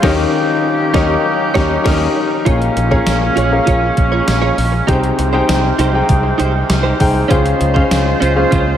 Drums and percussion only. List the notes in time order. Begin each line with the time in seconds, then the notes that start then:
0.03 kick, snare, crash
0.94 kick, snare
1.55 kick, snare
1.86 kick, snare, crash
2.46 kick, closed hi-hat
2.62 closed hi-hat
2.77 closed hi-hat
2.92 kick
3.07 snare, closed hi-hat, tambourine
3.37 closed hi-hat
3.67 kick, closed hi-hat
3.97 kick, closed hi-hat
4.28 snare, closed hi-hat, tambourine
4.58 open hi-hat
4.88 kick, closed hi-hat
5.04 closed hi-hat
5.19 closed hi-hat
5.49 snare, closed hi-hat, tambourine
5.79 closed hi-hat
6.09 kick, closed hi-hat
6.40 closed hi-hat
6.70 snare, closed hi-hat, tambourine
7.00 kick, open hi-hat
7.31 kick, closed hi-hat
7.46 closed hi-hat
7.61 closed hi-hat
7.76 kick
7.91 snare, closed hi-hat, tambourine
8.22 closed hi-hat
8.52 kick, closed hi-hat